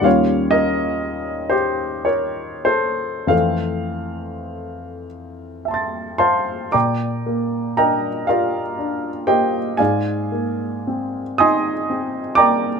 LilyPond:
<<
  \new Staff \with { instrumentName = "Grand piano" } { \time 6/8 \key ees \lydian \tempo 4. = 38 << { r2. | r2 <e'' a'' c''' a'''>4 | \key bes \mixolydian bes,8 bes8 d'8 g'8 d'8 bes8 | aes,8 bes8 c'8 ees'8 c'8 bes8 | } \\ { <des'' f''>8 <bes' ees''>4 <g' c''>8 <bes' des''>8 <a' c''>8 | <c'' f''>4. r4 <c'' f'' a'' c'''>8 | <d'' g'' bes'' d'''>4 <bes' ees'' g'' bes''>8 <f' bes' d'' f''>4 <g' c'' ees'' g''>8 | <aes' d'' f'' aes''>4. <ees'' aes'' c''' ees'''>4 <d'' g'' bes'' d'''>8 | } >> }
  \new Staff \with { instrumentName = "Grand piano" } { \time 6/8 \key ees \lydian <ees, g bes des' f'>2. | <f, e a c' a'>2. | \key bes \mixolydian r2. | r2. | }
>>